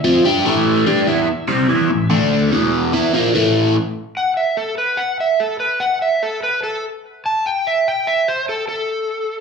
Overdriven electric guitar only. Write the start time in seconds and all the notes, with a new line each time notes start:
0.04 F3 C4 F4
0.24 G3 D4 G4
0.45 A2 E3 A3
0.86 G3 D4 G4
1.07 E3 B3 E4
1.27 muted overdriven electric guitar stroke
1.48 C3 G3 C4
1.68 E3 B3 E4
1.90 A2 E3
2.10 D3 A3 D4
2.52 E2 B2 E3
2.92 E3 B3 E4
3.13 A#2 F3 A#3
3.34 A2 E3 A3